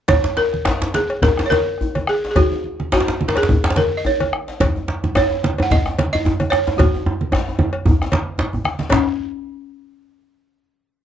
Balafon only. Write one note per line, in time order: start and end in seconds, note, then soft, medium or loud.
0.08 0.38 C#5 medium
0.37 0.96 A#4 medium
0.95 1.24 G#4 medium
1.22 1.45 A#4 medium
1.46 1.52 C#5 medium
1.50 2.09 A#4 medium
2.09 2.30 G#4 medium
2.31 2.37 G#4 medium
2.37 2.92 F#4 medium
2.94 3.30 F#4 medium
3.28 3.36 A#4 medium
3.38 3.79 G#4 medium
3.77 3.99 A#4 medium
3.97 4.04 D#5 medium
4.06 4.46 C#5 medium
5.17 5.67 C#5 medium
5.63 5.69 F#5 medium
5.72 6.10 D#5 medium
6.13 6.53 D#5 medium
6.50 6.79 C#5 medium
6.78 7.81 F#4 medium
8.91 9.16 C#4 medium